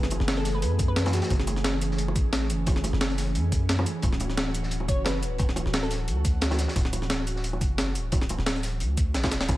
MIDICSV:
0, 0, Header, 1, 5, 480
1, 0, Start_track
1, 0, Tempo, 340909
1, 1837, Time_signature, 4, 2, 24, 8
1, 13479, End_track
2, 0, Start_track
2, 0, Title_t, "Synth pluck"
2, 0, Program_c, 0, 84
2, 526, Note_on_c, 0, 69, 95
2, 741, Note_off_c, 0, 69, 0
2, 767, Note_on_c, 0, 71, 92
2, 838, Note_off_c, 0, 71, 0
2, 878, Note_on_c, 0, 71, 79
2, 961, Note_off_c, 0, 71, 0
2, 1242, Note_on_c, 0, 71, 95
2, 1573, Note_off_c, 0, 71, 0
2, 1596, Note_on_c, 0, 66, 92
2, 1679, Note_off_c, 0, 66, 0
2, 1726, Note_on_c, 0, 66, 78
2, 1797, Note_off_c, 0, 66, 0
2, 6877, Note_on_c, 0, 73, 95
2, 7095, Note_off_c, 0, 73, 0
2, 7119, Note_on_c, 0, 71, 95
2, 7794, Note_off_c, 0, 71, 0
2, 8205, Note_on_c, 0, 69, 94
2, 8420, Note_off_c, 0, 69, 0
2, 13479, End_track
3, 0, Start_track
3, 0, Title_t, "Analog synth pad"
3, 0, Program_c, 1, 89
3, 0, Note_on_c, 1, 52, 84
3, 0, Note_on_c, 1, 57, 79
3, 0, Note_on_c, 1, 59, 76
3, 0, Note_on_c, 1, 68, 94
3, 1800, Note_off_c, 1, 59, 0
3, 1837, Note_on_c, 1, 61, 77
3, 5383, Note_off_c, 1, 57, 0
3, 5383, Note_off_c, 1, 68, 0
3, 5433, Note_on_c, 1, 66, 91
3, 13299, Note_off_c, 1, 66, 0
3, 13301, Note_off_c, 1, 61, 0
3, 13303, Note_off_c, 1, 52, 0
3, 13479, End_track
4, 0, Start_track
4, 0, Title_t, "808-style bass"
4, 0, Program_c, 2, 38
4, 0, Note_on_c, 2, 30, 94
4, 265, Note_off_c, 2, 30, 0
4, 286, Note_on_c, 2, 30, 104
4, 876, Note_on_c, 2, 42, 94
4, 897, Note_off_c, 2, 30, 0
4, 1706, Note_off_c, 2, 42, 0
4, 1838, Note_on_c, 2, 30, 97
4, 3037, Note_on_c, 2, 33, 97
4, 3059, Note_off_c, 2, 30, 0
4, 3517, Note_on_c, 2, 30, 94
4, 3538, Note_off_c, 2, 33, 0
4, 4106, Note_off_c, 2, 30, 0
4, 4127, Note_on_c, 2, 30, 101
4, 4719, Note_on_c, 2, 42, 93
4, 4740, Note_off_c, 2, 30, 0
4, 5421, Note_off_c, 2, 42, 0
4, 5677, Note_on_c, 2, 26, 98
4, 6877, Note_on_c, 2, 30, 100
4, 6898, Note_off_c, 2, 26, 0
4, 7358, Note_on_c, 2, 26, 92
4, 7379, Note_off_c, 2, 30, 0
4, 7946, Note_off_c, 2, 26, 0
4, 7967, Note_on_c, 2, 26, 104
4, 8559, Note_on_c, 2, 38, 95
4, 8580, Note_off_c, 2, 26, 0
4, 9387, Note_off_c, 2, 38, 0
4, 9517, Note_on_c, 2, 26, 100
4, 10716, Note_on_c, 2, 30, 98
4, 10737, Note_off_c, 2, 26, 0
4, 11197, Note_on_c, 2, 26, 92
4, 11218, Note_off_c, 2, 30, 0
4, 11786, Note_off_c, 2, 26, 0
4, 11805, Note_on_c, 2, 26, 99
4, 12399, Note_on_c, 2, 38, 93
4, 12420, Note_off_c, 2, 26, 0
4, 12878, Note_on_c, 2, 33, 84
4, 12899, Note_off_c, 2, 38, 0
4, 13120, Note_on_c, 2, 26, 84
4, 13141, Note_off_c, 2, 33, 0
4, 13337, Note_off_c, 2, 26, 0
4, 13357, Note_on_c, 2, 30, 97
4, 13479, Note_off_c, 2, 30, 0
4, 13479, End_track
5, 0, Start_track
5, 0, Title_t, "Drums"
5, 46, Note_on_c, 9, 40, 59
5, 145, Note_on_c, 9, 42, 67
5, 156, Note_off_c, 9, 42, 0
5, 156, Note_on_c, 9, 42, 97
5, 156, Note_on_c, 9, 69, 61
5, 164, Note_on_c, 9, 60, 71
5, 187, Note_off_c, 9, 40, 0
5, 283, Note_on_c, 9, 40, 38
5, 296, Note_off_c, 9, 42, 0
5, 296, Note_off_c, 9, 69, 0
5, 305, Note_off_c, 9, 60, 0
5, 394, Note_on_c, 9, 38, 126
5, 394, Note_on_c, 9, 42, 83
5, 401, Note_off_c, 9, 42, 0
5, 401, Note_on_c, 9, 42, 80
5, 406, Note_off_c, 9, 38, 0
5, 406, Note_on_c, 9, 38, 118
5, 424, Note_off_c, 9, 40, 0
5, 521, Note_off_c, 9, 42, 0
5, 521, Note_on_c, 9, 42, 42
5, 547, Note_off_c, 9, 38, 0
5, 632, Note_on_c, 9, 38, 53
5, 636, Note_on_c, 9, 46, 81
5, 636, Note_on_c, 9, 69, 58
5, 641, Note_off_c, 9, 42, 0
5, 641, Note_on_c, 9, 42, 72
5, 773, Note_off_c, 9, 38, 0
5, 777, Note_off_c, 9, 46, 0
5, 777, Note_off_c, 9, 69, 0
5, 782, Note_off_c, 9, 42, 0
5, 875, Note_on_c, 9, 42, 82
5, 877, Note_off_c, 9, 42, 0
5, 877, Note_on_c, 9, 42, 91
5, 1017, Note_off_c, 9, 42, 0
5, 1111, Note_on_c, 9, 42, 65
5, 1115, Note_off_c, 9, 42, 0
5, 1115, Note_on_c, 9, 42, 95
5, 1115, Note_on_c, 9, 69, 58
5, 1117, Note_on_c, 9, 36, 112
5, 1256, Note_off_c, 9, 42, 0
5, 1256, Note_off_c, 9, 69, 0
5, 1258, Note_off_c, 9, 36, 0
5, 1355, Note_on_c, 9, 38, 127
5, 1355, Note_on_c, 9, 42, 83
5, 1357, Note_off_c, 9, 42, 0
5, 1357, Note_on_c, 9, 42, 81
5, 1365, Note_off_c, 9, 38, 0
5, 1365, Note_on_c, 9, 38, 104
5, 1489, Note_off_c, 9, 42, 0
5, 1489, Note_on_c, 9, 42, 83
5, 1493, Note_on_c, 9, 60, 94
5, 1495, Note_off_c, 9, 38, 0
5, 1495, Note_on_c, 9, 38, 105
5, 1589, Note_off_c, 9, 42, 0
5, 1589, Note_on_c, 9, 42, 78
5, 1596, Note_off_c, 9, 42, 0
5, 1596, Note_on_c, 9, 42, 93
5, 1596, Note_on_c, 9, 69, 58
5, 1601, Note_off_c, 9, 38, 0
5, 1601, Note_on_c, 9, 38, 102
5, 1634, Note_off_c, 9, 60, 0
5, 1716, Note_off_c, 9, 42, 0
5, 1716, Note_on_c, 9, 42, 80
5, 1729, Note_off_c, 9, 38, 0
5, 1729, Note_on_c, 9, 38, 98
5, 1737, Note_off_c, 9, 69, 0
5, 1835, Note_off_c, 9, 42, 0
5, 1835, Note_on_c, 9, 42, 78
5, 1837, Note_on_c, 9, 36, 125
5, 1845, Note_off_c, 9, 42, 0
5, 1845, Note_on_c, 9, 42, 82
5, 1845, Note_on_c, 9, 60, 71
5, 1870, Note_off_c, 9, 38, 0
5, 1965, Note_on_c, 9, 40, 55
5, 1978, Note_off_c, 9, 36, 0
5, 1985, Note_off_c, 9, 42, 0
5, 1986, Note_off_c, 9, 60, 0
5, 2072, Note_on_c, 9, 42, 69
5, 2075, Note_off_c, 9, 42, 0
5, 2075, Note_on_c, 9, 42, 96
5, 2075, Note_on_c, 9, 60, 70
5, 2075, Note_on_c, 9, 69, 59
5, 2105, Note_off_c, 9, 40, 0
5, 2203, Note_on_c, 9, 40, 38
5, 2208, Note_off_c, 9, 42, 0
5, 2208, Note_on_c, 9, 42, 44
5, 2215, Note_off_c, 9, 60, 0
5, 2215, Note_off_c, 9, 69, 0
5, 2311, Note_on_c, 9, 38, 109
5, 2315, Note_off_c, 9, 38, 0
5, 2315, Note_off_c, 9, 42, 0
5, 2315, Note_on_c, 9, 38, 125
5, 2315, Note_on_c, 9, 42, 93
5, 2344, Note_off_c, 9, 40, 0
5, 2456, Note_off_c, 9, 38, 0
5, 2456, Note_off_c, 9, 42, 0
5, 2555, Note_on_c, 9, 42, 89
5, 2555, Note_on_c, 9, 69, 57
5, 2565, Note_off_c, 9, 42, 0
5, 2565, Note_on_c, 9, 42, 74
5, 2691, Note_on_c, 9, 38, 51
5, 2696, Note_off_c, 9, 69, 0
5, 2705, Note_off_c, 9, 42, 0
5, 2793, Note_on_c, 9, 42, 89
5, 2796, Note_off_c, 9, 42, 0
5, 2796, Note_on_c, 9, 42, 79
5, 2832, Note_off_c, 9, 38, 0
5, 2933, Note_on_c, 9, 60, 71
5, 2936, Note_off_c, 9, 42, 0
5, 3035, Note_on_c, 9, 42, 74
5, 3037, Note_off_c, 9, 42, 0
5, 3037, Note_on_c, 9, 36, 114
5, 3037, Note_on_c, 9, 42, 90
5, 3037, Note_on_c, 9, 69, 58
5, 3074, Note_off_c, 9, 60, 0
5, 3178, Note_off_c, 9, 36, 0
5, 3178, Note_off_c, 9, 42, 0
5, 3178, Note_off_c, 9, 69, 0
5, 3274, Note_on_c, 9, 38, 126
5, 3277, Note_off_c, 9, 38, 0
5, 3277, Note_on_c, 9, 38, 127
5, 3277, Note_on_c, 9, 42, 79
5, 3279, Note_off_c, 9, 42, 0
5, 3279, Note_on_c, 9, 42, 85
5, 3417, Note_off_c, 9, 38, 0
5, 3420, Note_off_c, 9, 42, 0
5, 3516, Note_on_c, 9, 42, 75
5, 3519, Note_off_c, 9, 42, 0
5, 3519, Note_on_c, 9, 42, 90
5, 3519, Note_on_c, 9, 69, 56
5, 3660, Note_off_c, 9, 42, 0
5, 3660, Note_off_c, 9, 69, 0
5, 3752, Note_on_c, 9, 42, 96
5, 3758, Note_off_c, 9, 42, 0
5, 3758, Note_on_c, 9, 36, 127
5, 3758, Note_on_c, 9, 42, 76
5, 3765, Note_on_c, 9, 60, 76
5, 3887, Note_on_c, 9, 40, 54
5, 3898, Note_off_c, 9, 36, 0
5, 3899, Note_off_c, 9, 42, 0
5, 3906, Note_off_c, 9, 60, 0
5, 3995, Note_on_c, 9, 60, 75
5, 3999, Note_on_c, 9, 42, 91
5, 3999, Note_on_c, 9, 69, 59
5, 4004, Note_off_c, 9, 42, 0
5, 4004, Note_on_c, 9, 42, 73
5, 4027, Note_off_c, 9, 40, 0
5, 4129, Note_on_c, 9, 40, 36
5, 4135, Note_off_c, 9, 60, 0
5, 4140, Note_off_c, 9, 69, 0
5, 4144, Note_off_c, 9, 42, 0
5, 4234, Note_on_c, 9, 42, 78
5, 4238, Note_off_c, 9, 42, 0
5, 4238, Note_on_c, 9, 38, 127
5, 4238, Note_on_c, 9, 42, 79
5, 4243, Note_off_c, 9, 38, 0
5, 4243, Note_on_c, 9, 38, 121
5, 4270, Note_off_c, 9, 40, 0
5, 4364, Note_off_c, 9, 42, 0
5, 4364, Note_on_c, 9, 42, 42
5, 4384, Note_off_c, 9, 38, 0
5, 4478, Note_on_c, 9, 46, 84
5, 4478, Note_on_c, 9, 69, 57
5, 4480, Note_off_c, 9, 42, 0
5, 4480, Note_on_c, 9, 42, 70
5, 4488, Note_on_c, 9, 38, 53
5, 4619, Note_off_c, 9, 46, 0
5, 4619, Note_off_c, 9, 69, 0
5, 4621, Note_off_c, 9, 42, 0
5, 4629, Note_off_c, 9, 38, 0
5, 4718, Note_on_c, 9, 42, 78
5, 4724, Note_off_c, 9, 42, 0
5, 4724, Note_on_c, 9, 42, 82
5, 4865, Note_off_c, 9, 42, 0
5, 4957, Note_on_c, 9, 36, 110
5, 4957, Note_on_c, 9, 42, 90
5, 4957, Note_on_c, 9, 69, 57
5, 4959, Note_off_c, 9, 42, 0
5, 4959, Note_on_c, 9, 42, 67
5, 5098, Note_off_c, 9, 36, 0
5, 5098, Note_off_c, 9, 69, 0
5, 5099, Note_off_c, 9, 42, 0
5, 5197, Note_on_c, 9, 38, 109
5, 5197, Note_on_c, 9, 42, 95
5, 5198, Note_off_c, 9, 38, 0
5, 5198, Note_off_c, 9, 42, 0
5, 5198, Note_on_c, 9, 38, 127
5, 5198, Note_on_c, 9, 42, 78
5, 5334, Note_on_c, 9, 60, 98
5, 5339, Note_off_c, 9, 38, 0
5, 5339, Note_off_c, 9, 42, 0
5, 5438, Note_on_c, 9, 42, 87
5, 5438, Note_on_c, 9, 69, 57
5, 5445, Note_off_c, 9, 42, 0
5, 5445, Note_on_c, 9, 42, 64
5, 5475, Note_off_c, 9, 60, 0
5, 5579, Note_off_c, 9, 69, 0
5, 5586, Note_off_c, 9, 42, 0
5, 5666, Note_on_c, 9, 42, 82
5, 5677, Note_on_c, 9, 36, 122
5, 5679, Note_off_c, 9, 42, 0
5, 5679, Note_on_c, 9, 42, 77
5, 5687, Note_on_c, 9, 60, 66
5, 5809, Note_on_c, 9, 40, 52
5, 5818, Note_off_c, 9, 36, 0
5, 5820, Note_off_c, 9, 42, 0
5, 5828, Note_off_c, 9, 60, 0
5, 5911, Note_on_c, 9, 42, 68
5, 5920, Note_off_c, 9, 42, 0
5, 5920, Note_on_c, 9, 42, 93
5, 5920, Note_on_c, 9, 69, 62
5, 5923, Note_on_c, 9, 60, 68
5, 5950, Note_off_c, 9, 40, 0
5, 6049, Note_on_c, 9, 40, 35
5, 6053, Note_off_c, 9, 42, 0
5, 6053, Note_on_c, 9, 42, 43
5, 6061, Note_off_c, 9, 69, 0
5, 6064, Note_off_c, 9, 60, 0
5, 6160, Note_off_c, 9, 42, 0
5, 6160, Note_on_c, 9, 38, 122
5, 6160, Note_on_c, 9, 42, 79
5, 6161, Note_off_c, 9, 42, 0
5, 6161, Note_on_c, 9, 42, 79
5, 6163, Note_off_c, 9, 38, 0
5, 6163, Note_on_c, 9, 38, 122
5, 6190, Note_off_c, 9, 40, 0
5, 6302, Note_off_c, 9, 42, 0
5, 6304, Note_off_c, 9, 38, 0
5, 6397, Note_on_c, 9, 42, 77
5, 6400, Note_off_c, 9, 42, 0
5, 6400, Note_on_c, 9, 42, 89
5, 6400, Note_on_c, 9, 69, 62
5, 6517, Note_on_c, 9, 38, 52
5, 6541, Note_off_c, 9, 42, 0
5, 6541, Note_off_c, 9, 69, 0
5, 6633, Note_on_c, 9, 42, 90
5, 6640, Note_off_c, 9, 42, 0
5, 6640, Note_on_c, 9, 42, 80
5, 6658, Note_off_c, 9, 38, 0
5, 6761, Note_on_c, 9, 60, 59
5, 6781, Note_off_c, 9, 42, 0
5, 6877, Note_on_c, 9, 36, 109
5, 6877, Note_on_c, 9, 42, 64
5, 6880, Note_off_c, 9, 42, 0
5, 6880, Note_on_c, 9, 42, 90
5, 6880, Note_on_c, 9, 69, 61
5, 6901, Note_off_c, 9, 60, 0
5, 7018, Note_off_c, 9, 36, 0
5, 7021, Note_off_c, 9, 42, 0
5, 7021, Note_off_c, 9, 69, 0
5, 7105, Note_on_c, 9, 38, 116
5, 7120, Note_off_c, 9, 38, 0
5, 7120, Note_on_c, 9, 38, 124
5, 7120, Note_on_c, 9, 42, 78
5, 7123, Note_off_c, 9, 42, 0
5, 7123, Note_on_c, 9, 42, 87
5, 7261, Note_off_c, 9, 38, 0
5, 7264, Note_off_c, 9, 42, 0
5, 7357, Note_on_c, 9, 42, 68
5, 7360, Note_off_c, 9, 42, 0
5, 7360, Note_on_c, 9, 42, 90
5, 7360, Note_on_c, 9, 69, 60
5, 7501, Note_off_c, 9, 42, 0
5, 7501, Note_off_c, 9, 69, 0
5, 7582, Note_on_c, 9, 42, 86
5, 7592, Note_on_c, 9, 60, 60
5, 7597, Note_on_c, 9, 36, 118
5, 7599, Note_off_c, 9, 42, 0
5, 7599, Note_on_c, 9, 42, 80
5, 7728, Note_on_c, 9, 40, 53
5, 7733, Note_off_c, 9, 60, 0
5, 7738, Note_off_c, 9, 36, 0
5, 7740, Note_off_c, 9, 42, 0
5, 7829, Note_on_c, 9, 60, 70
5, 7830, Note_on_c, 9, 42, 74
5, 7839, Note_off_c, 9, 42, 0
5, 7839, Note_on_c, 9, 42, 97
5, 7839, Note_on_c, 9, 69, 64
5, 7869, Note_off_c, 9, 40, 0
5, 7967, Note_on_c, 9, 40, 35
5, 7970, Note_off_c, 9, 60, 0
5, 7980, Note_off_c, 9, 42, 0
5, 7980, Note_off_c, 9, 69, 0
5, 8074, Note_on_c, 9, 42, 80
5, 8078, Note_off_c, 9, 42, 0
5, 8078, Note_on_c, 9, 38, 117
5, 8078, Note_on_c, 9, 42, 79
5, 8085, Note_off_c, 9, 38, 0
5, 8085, Note_on_c, 9, 38, 123
5, 8108, Note_off_c, 9, 40, 0
5, 8211, Note_off_c, 9, 42, 0
5, 8211, Note_on_c, 9, 42, 43
5, 8226, Note_off_c, 9, 38, 0
5, 8317, Note_on_c, 9, 46, 79
5, 8317, Note_on_c, 9, 69, 62
5, 8322, Note_on_c, 9, 38, 53
5, 8328, Note_off_c, 9, 42, 0
5, 8328, Note_on_c, 9, 42, 73
5, 8458, Note_off_c, 9, 46, 0
5, 8458, Note_off_c, 9, 69, 0
5, 8463, Note_off_c, 9, 38, 0
5, 8469, Note_off_c, 9, 42, 0
5, 8558, Note_on_c, 9, 42, 81
5, 8699, Note_off_c, 9, 42, 0
5, 8797, Note_on_c, 9, 36, 104
5, 8797, Note_on_c, 9, 42, 92
5, 8797, Note_on_c, 9, 69, 62
5, 8801, Note_off_c, 9, 42, 0
5, 8801, Note_on_c, 9, 42, 77
5, 8937, Note_off_c, 9, 36, 0
5, 8938, Note_off_c, 9, 69, 0
5, 8942, Note_off_c, 9, 42, 0
5, 9032, Note_on_c, 9, 42, 76
5, 9036, Note_on_c, 9, 38, 113
5, 9037, Note_off_c, 9, 38, 0
5, 9037, Note_off_c, 9, 42, 0
5, 9037, Note_on_c, 9, 38, 119
5, 9037, Note_on_c, 9, 42, 81
5, 9158, Note_off_c, 9, 38, 0
5, 9158, Note_on_c, 9, 38, 114
5, 9167, Note_on_c, 9, 60, 92
5, 9175, Note_off_c, 9, 42, 0
5, 9175, Note_on_c, 9, 42, 73
5, 9273, Note_off_c, 9, 42, 0
5, 9273, Note_on_c, 9, 42, 73
5, 9277, Note_off_c, 9, 42, 0
5, 9277, Note_on_c, 9, 42, 92
5, 9277, Note_on_c, 9, 69, 62
5, 9278, Note_off_c, 9, 38, 0
5, 9278, Note_on_c, 9, 38, 101
5, 9308, Note_off_c, 9, 60, 0
5, 9409, Note_off_c, 9, 38, 0
5, 9409, Note_on_c, 9, 38, 107
5, 9417, Note_off_c, 9, 42, 0
5, 9417, Note_off_c, 9, 69, 0
5, 9424, Note_on_c, 9, 42, 76
5, 9517, Note_off_c, 9, 42, 0
5, 9517, Note_on_c, 9, 36, 119
5, 9517, Note_on_c, 9, 42, 85
5, 9517, Note_on_c, 9, 60, 61
5, 9520, Note_off_c, 9, 42, 0
5, 9520, Note_on_c, 9, 42, 95
5, 9550, Note_off_c, 9, 38, 0
5, 9646, Note_on_c, 9, 40, 55
5, 9658, Note_off_c, 9, 36, 0
5, 9658, Note_off_c, 9, 60, 0
5, 9661, Note_off_c, 9, 42, 0
5, 9756, Note_on_c, 9, 42, 67
5, 9757, Note_off_c, 9, 42, 0
5, 9757, Note_on_c, 9, 42, 97
5, 9757, Note_on_c, 9, 60, 58
5, 9757, Note_on_c, 9, 69, 67
5, 9786, Note_off_c, 9, 40, 0
5, 9886, Note_on_c, 9, 40, 35
5, 9887, Note_off_c, 9, 42, 0
5, 9887, Note_on_c, 9, 42, 41
5, 9897, Note_off_c, 9, 69, 0
5, 9898, Note_off_c, 9, 60, 0
5, 9995, Note_on_c, 9, 38, 106
5, 9996, Note_off_c, 9, 38, 0
5, 9996, Note_off_c, 9, 42, 0
5, 9996, Note_on_c, 9, 38, 118
5, 9996, Note_on_c, 9, 42, 84
5, 10003, Note_off_c, 9, 42, 0
5, 10003, Note_on_c, 9, 42, 93
5, 10027, Note_off_c, 9, 40, 0
5, 10136, Note_off_c, 9, 38, 0
5, 10144, Note_off_c, 9, 42, 0
5, 10237, Note_on_c, 9, 42, 94
5, 10237, Note_on_c, 9, 69, 62
5, 10246, Note_off_c, 9, 42, 0
5, 10246, Note_on_c, 9, 42, 63
5, 10363, Note_on_c, 9, 38, 46
5, 10378, Note_off_c, 9, 69, 0
5, 10387, Note_off_c, 9, 42, 0
5, 10476, Note_on_c, 9, 42, 83
5, 10477, Note_off_c, 9, 42, 0
5, 10477, Note_on_c, 9, 42, 89
5, 10504, Note_off_c, 9, 38, 0
5, 10605, Note_on_c, 9, 60, 62
5, 10618, Note_off_c, 9, 42, 0
5, 10717, Note_on_c, 9, 36, 104
5, 10717, Note_on_c, 9, 42, 98
5, 10717, Note_on_c, 9, 69, 65
5, 10722, Note_off_c, 9, 42, 0
5, 10722, Note_on_c, 9, 42, 65
5, 10746, Note_off_c, 9, 60, 0
5, 10858, Note_off_c, 9, 36, 0
5, 10858, Note_off_c, 9, 69, 0
5, 10863, Note_off_c, 9, 42, 0
5, 10957, Note_on_c, 9, 38, 117
5, 10957, Note_on_c, 9, 42, 83
5, 10966, Note_off_c, 9, 38, 0
5, 10966, Note_on_c, 9, 38, 115
5, 10968, Note_off_c, 9, 42, 0
5, 10968, Note_on_c, 9, 42, 84
5, 11107, Note_off_c, 9, 38, 0
5, 11109, Note_off_c, 9, 42, 0
5, 11197, Note_on_c, 9, 42, 92
5, 11197, Note_on_c, 9, 69, 62
5, 11200, Note_off_c, 9, 42, 0
5, 11200, Note_on_c, 9, 42, 68
5, 11338, Note_off_c, 9, 69, 0
5, 11341, Note_off_c, 9, 42, 0
5, 11432, Note_on_c, 9, 42, 98
5, 11437, Note_off_c, 9, 42, 0
5, 11437, Note_on_c, 9, 36, 118
5, 11437, Note_on_c, 9, 42, 85
5, 11442, Note_on_c, 9, 60, 72
5, 11567, Note_on_c, 9, 40, 56
5, 11577, Note_off_c, 9, 36, 0
5, 11578, Note_off_c, 9, 42, 0
5, 11583, Note_off_c, 9, 60, 0
5, 11678, Note_on_c, 9, 42, 100
5, 11678, Note_on_c, 9, 69, 63
5, 11682, Note_off_c, 9, 42, 0
5, 11682, Note_on_c, 9, 42, 65
5, 11690, Note_on_c, 9, 60, 71
5, 11708, Note_off_c, 9, 40, 0
5, 11807, Note_on_c, 9, 40, 35
5, 11819, Note_off_c, 9, 69, 0
5, 11823, Note_off_c, 9, 42, 0
5, 11831, Note_off_c, 9, 60, 0
5, 11914, Note_on_c, 9, 38, 121
5, 11918, Note_off_c, 9, 38, 0
5, 11918, Note_on_c, 9, 38, 118
5, 11918, Note_on_c, 9, 42, 83
5, 11920, Note_off_c, 9, 42, 0
5, 11920, Note_on_c, 9, 42, 96
5, 11948, Note_off_c, 9, 40, 0
5, 12046, Note_on_c, 9, 69, 29
5, 12051, Note_off_c, 9, 42, 0
5, 12051, Note_on_c, 9, 42, 48
5, 12059, Note_off_c, 9, 38, 0
5, 12155, Note_off_c, 9, 69, 0
5, 12155, Note_on_c, 9, 46, 78
5, 12155, Note_on_c, 9, 69, 63
5, 12160, Note_on_c, 9, 38, 56
5, 12165, Note_off_c, 9, 42, 0
5, 12165, Note_on_c, 9, 42, 69
5, 12296, Note_off_c, 9, 46, 0
5, 12296, Note_off_c, 9, 69, 0
5, 12301, Note_off_c, 9, 38, 0
5, 12306, Note_off_c, 9, 42, 0
5, 12395, Note_on_c, 9, 42, 87
5, 12405, Note_off_c, 9, 42, 0
5, 12405, Note_on_c, 9, 42, 93
5, 12546, Note_off_c, 9, 42, 0
5, 12636, Note_on_c, 9, 42, 71
5, 12636, Note_on_c, 9, 69, 64
5, 12637, Note_on_c, 9, 36, 106
5, 12776, Note_off_c, 9, 69, 0
5, 12777, Note_off_c, 9, 42, 0
5, 12778, Note_off_c, 9, 36, 0
5, 12875, Note_on_c, 9, 38, 64
5, 12875, Note_on_c, 9, 42, 86
5, 12880, Note_off_c, 9, 42, 0
5, 12880, Note_on_c, 9, 42, 78
5, 12883, Note_off_c, 9, 38, 0
5, 12883, Note_on_c, 9, 38, 97
5, 13002, Note_off_c, 9, 42, 0
5, 13002, Note_on_c, 9, 42, 83
5, 13005, Note_off_c, 9, 38, 0
5, 13005, Note_on_c, 9, 38, 63
5, 13006, Note_on_c, 9, 36, 59
5, 13007, Note_off_c, 9, 38, 0
5, 13007, Note_on_c, 9, 38, 107
5, 13011, Note_on_c, 9, 60, 86
5, 13116, Note_off_c, 9, 38, 0
5, 13116, Note_off_c, 9, 42, 0
5, 13116, Note_on_c, 9, 38, 86
5, 13116, Note_on_c, 9, 42, 98
5, 13116, Note_on_c, 9, 69, 60
5, 13117, Note_off_c, 9, 38, 0
5, 13117, Note_on_c, 9, 38, 97
5, 13121, Note_off_c, 9, 42, 0
5, 13121, Note_on_c, 9, 42, 85
5, 13147, Note_off_c, 9, 36, 0
5, 13152, Note_off_c, 9, 60, 0
5, 13241, Note_off_c, 9, 38, 0
5, 13241, Note_on_c, 9, 38, 107
5, 13244, Note_off_c, 9, 38, 0
5, 13244, Note_on_c, 9, 38, 83
5, 13249, Note_off_c, 9, 42, 0
5, 13249, Note_on_c, 9, 42, 83
5, 13257, Note_off_c, 9, 69, 0
5, 13355, Note_off_c, 9, 42, 0
5, 13355, Note_on_c, 9, 42, 98
5, 13357, Note_on_c, 9, 36, 122
5, 13361, Note_on_c, 9, 60, 93
5, 13366, Note_off_c, 9, 42, 0
5, 13366, Note_on_c, 9, 42, 95
5, 13385, Note_off_c, 9, 38, 0
5, 13479, Note_off_c, 9, 36, 0
5, 13479, Note_off_c, 9, 42, 0
5, 13479, Note_off_c, 9, 60, 0
5, 13479, End_track
0, 0, End_of_file